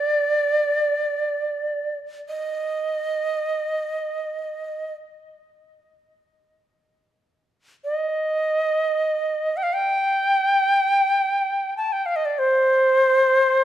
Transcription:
Already playing: D5
2.29 D#5
7.85 D#5
9.57 G5
9.63 F5
9.73 G5
11.77 A5
11.93 G5
12.06 F5
12.16 D#5
12.25 D5
12.39 C5

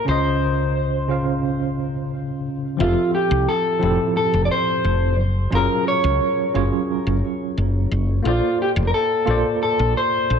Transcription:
0.05 C#2 C#3 C#4 F4
0.09 C5 D#5
1.08 C#3 C#4 F4 C5 F5
2.77 F1 F3 C4 F4 E5
2.82 G4 A4
3.15 G4
3.31 C2
3.48 A4
3.79 F1 F3 C4 E4
3.84 G4 A4
4.17 A4
4.34 F1
4.45 D5
4.51 C5
4.84 F1
5.18 F#1
5.51 F#1 F#3 C#4 F4
5.55 G#4 A#4
5.88 C#5
6.04 C#2
6.54 F#1 F#3 C#4 F4 G#4 C#5
7.07 F#1
7.58 F#1
7.91 F#1
8.22 A#1 A#3 F4 A4
8.27 F4 C5 D5
8.62 G4
8.76 F1
8.87 A#4
8.94 A4
9.25 A#1 A#3 F4 A4
9.30 C5 D5
9.63 A4
9.79 A#1
9.97 C5
10.30 A#1

